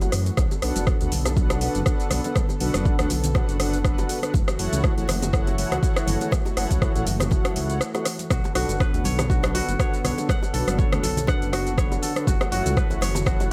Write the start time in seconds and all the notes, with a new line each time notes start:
Already playing: E3 A3 F#4
0.01 F#1 E4 F#4 A4 C#5 F#5, closed hi-hat, high bongo, muted conga, shaker
0.12 F#2, cross-stick, open hi-hat, low bongo, shaker
0.26 closed hi-hat, muted conga, shaker
0.37 B1 D3 B3 A4, kick, cross-stick, low bongo, high conga, shaker
0.51 high bongo, muted conga, shaker
0.62 B1 D4 F#4 A4 B4 F#5, cross-stick, open hi-hat, shaker
0.76 F#1, closed hi-hat, muted conga, high conga, shaker
0.87 kick, cross-stick, shaker
1.01 D2 D4 F#4 A4 B4 F#5, closed hi-hat, low bongo, shaker
1.12 B1, open hi-hat, muted conga, high conga, low conga, shaker
1.25 cross-stick, closed hi-hat, high bongo, low bongo, low conga, shaker
1.36 D4 F#4 A4 B4 F#5, kick, muted conga, high conga, shaker
1.50 cross-stick, closed hi-hat, high bongo, shaker
1.61 D4 F#4 A4 B4 F#5, open hi-hat, muted conga, shaker
1.75 F#1, closed hi-hat, shaker
1.86 D4 F#4 A4 B4 F#5, kick, cross-stick, shaker
2.00 closed hi-hat, muted conga, shaker
2.11 B1, cross-stick, open hi-hat, high conga, low conga, shaker
2.24 D4 F#4 A4 B4 F#5, closed hi-hat, low bongo, muted conga, shaker
2.36 kick, cross-stick, low bongo, high conga, shaker
2.49 high bongo, muted conga, shaker
2.60 B1 D4 F#4 A4 B4 F#5, open hi-hat, shaker
2.74 F#1, cross-stick, closed hi-hat, muted conga, high conga, shaker
2.85 kick, shaker
2.99 D2 D4 F#4 A4 B4 F#5, cross-stick, closed hi-hat, low bongo, shaker
3.10 B1, open hi-hat, muted conga, high conga, low conga, shaker
3.24 closed hi-hat, low conga, shaker
3.35 D4 F#4 A4 B4 F#5, kick, cross-stick, low bongo, shaker
3.49 F#1, closed hi-hat, shaker
3.60 D4 F#4 A4 B4 F#5, cross-stick, open hi-hat, muted conga, shaker
3.73 closed hi-hat, shaker
3.84 D4 F#4 A4 B4 F#5, kick, cross-stick, shaker
3.98 closed hi-hat, high bongo, muted conga, shaker
4.09 open hi-hat, low bongo, shaker
4.22 D4 F#4 A4 B4 F#5, cross-stick, closed hi-hat, muted conga, shaker
4.34 F#1 E3 A3 F#4, kick, low bongo, high conga, shaker
4.48 cross-stick, high bongo, muted conga, shaker
4.59 F#1 E4 F#4 A4 C#5 F#5, open hi-hat, shaker
4.72 C#2, closed hi-hat, muted conga, high conga, shaker
4.84 kick, cross-stick, shaker
4.97 A1 E4 F#4 A4 C#5 F#5, closed hi-hat, low bongo, shaker
5.08 F#1, cross-stick, open hi-hat, muted conga, high conga, low conga, shaker
5.22 closed hi-hat, high bongo, low bongo, low conga, shaker
5.33 E4 F#4 A4 C#5 F#5, kick, cross-stick, muted conga, high conga, shaker
5.47 closed hi-hat, high bongo, shaker
5.58 E4 F#4 A4 C#5 F#5, open hi-hat, muted conga, shaker
5.72 C#2, cross-stick, closed hi-hat, shaker
5.83 E4 F#4 A4 C#5 F#5, kick, shaker
5.96 cross-stick, closed hi-hat, muted conga, shaker
6.07 F#1, open hi-hat, high conga, low conga, shaker
6.21 E4 F#4 A4 C#5 F#5, closed hi-hat, low bongo, muted conga, shaker
6.31 kick, cross-stick, low bongo, high conga, shaker
6.45 closed hi-hat, high bongo, muted conga, shaker
6.57 F#1 E4 F#4 A4 C#5 F#5, cross-stick, open hi-hat, shaker
6.70 C#2, kick, closed hi-hat, muted conga, high conga, shaker
6.82 kick, cross-stick, shaker
6.95 A1 E4 F#4 A4 C#5 F#5, closed hi-hat, low bongo, shaker
7.06 F#1, open hi-hat, muted conga, high conga, low conga, shaker
7.20 cross-stick, closed hi-hat, high bongo, low bongo, low conga, shaker
7.31 E4 F#4 A4 C#5 F#5, kick, low bongo, muted conga, shaker
7.45 F#2, cross-stick, closed hi-hat, shaker
7.56 C#2 E4 F#4 A4 C#5 F#5, open hi-hat, muted conga, high conga, shaker
7.70 E4 F#4 A4 C#5 F#5, closed hi-hat, shaker
7.81 cross-stick, shaker
7.94 E4 F#4 A4 C#5 F#5, cross-stick, closed hi-hat, high bongo, muted conga, shaker
8.05 cross-stick, open hi-hat, low bongo, shaker
8.19 closed hi-hat, muted conga, shaker
8.30 B1 D3 B3 F#4 A4, kick, cross-stick, low bongo, high conga, shaker
8.44 high bongo, muted conga, shaker
8.55 B1 D4 F#4 A4 B4 F#5, cross-stick, open hi-hat, shaker
8.69 F#1, closed hi-hat, muted conga, high conga, shaker
8.80 B4, kick, cross-stick, shaker
8.94 D2 D4 F#4 A4 B4 F#5, closed hi-hat, low bongo, shaker
9.04 B1 C#5, open hi-hat, muted conga, high conga, low conga, shaker
9.18 cross-stick, closed hi-hat, high bongo, low bongo, low conga, shaker
9.30 D4 F#4 A4 B4 F#5, kick, muted conga, high conga, shaker
9.43 cross-stick, closed hi-hat, high bongo, shaker
9.54 D4 F#4 A4 B4 F#5, open hi-hat, muted conga, shaker
9.68 F#1, closed hi-hat, shaker
9.79 D4 F#4 A4 B4 C#5 F#5, kick, cross-stick, shaker
9.93 closed hi-hat, muted conga, shaker
10.04 B1 C#5, cross-stick, open hi-hat, high conga, low conga, shaker
10.18 D4 F#4 A4 B4 F#5, closed hi-hat, low bongo, muted conga, shaker
10.29 F#5, kick, cross-stick, low bongo, high conga, shaker
10.43 high bongo, muted conga, shaker
10.54 B1 D4 F#4 A4 B4 F#5, open hi-hat, shaker
10.67 F#1, cross-stick, closed hi-hat, muted conga, high conga, shaker
10.78 C#5, kick, shaker
10.92 D2 D4 F#4 A4 B4 F#5, cross-stick, closed hi-hat, low bongo, shaker
11.03 B1 A4, open hi-hat, muted conga, high conga, low conga, shaker
11.17 closed hi-hat, low conga, shaker
11.27 D4 F#4 A4 B4 F#5, kick, cross-stick, low bongo, muted conga, shaker
11.42 F#1, closed hi-hat, shaker
11.52 D4 F#4 A4 B4 F#5, cross-stick, open hi-hat, muted conga, shaker
11.67 closed hi-hat, shaker
11.77 B4 C#5, kick, cross-stick, shaker
11.91 closed hi-hat, high bongo, muted conga, shaker
12.02 A4, open hi-hat, low bongo, shaker
12.16 D4 F#4 A4 B4 F#5, cross-stick, closed hi-hat, muted conga, shaker
12.27 F#1 E3 A3 F#4, kick, low bongo, high conga, shaker
12.41 cross-stick, high bongo, muted conga, shaker
12.52 F#1 E4 F#4 A4 C#5 F#5, open hi-hat, shaker
12.66 C#2, closed hi-hat, muted conga, high conga, shaker
12.77 B4, kick, cross-stick, shaker
12.90 A1 E4 F#4 A4 C#5 F#5, closed hi-hat, low bongo, shaker
13.01 F#1 C#5, cross-stick, open hi-hat, muted conga, high conga, low conga, shaker
13.15 closed hi-hat, high bongo, low bongo, low conga, shaker
13.26 E4 F#4 A4 C#5 F#5, kick, cross-stick, muted conga, high conga, shaker
13.40 closed hi-hat, high bongo, shaker